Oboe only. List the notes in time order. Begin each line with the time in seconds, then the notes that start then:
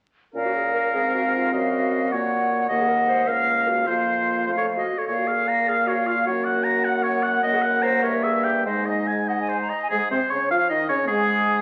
0.34 A#4
1.53 D#5
2.12 C#5
2.69 D#5
3.28 F5
3.87 C5
4.47 C5
4.58 C#5
4.78 D#5
4.98 C#5
5.07 C#5
5.27 F5
5.48 A#5
5.68 F5
5.87 C#5
6.07 F5
6.26 C#5
6.45 F#5
6.64 A#5
6.84 F#5
7.03 C#5
7.23 F#5
7.43 D#5
7.62 F#5
7.82 A#5
8.03 C#5
8.23 E5
8.44 G5
8.66 C5
8.86 D#5
9.07 G#5
9.28 D#5
9.49 C5
9.70 D#5
9.90 G#4
10.11 C5
10.31 C#5
10.51 F5
10.69 D#5
10.89 C#5
11.07 G#4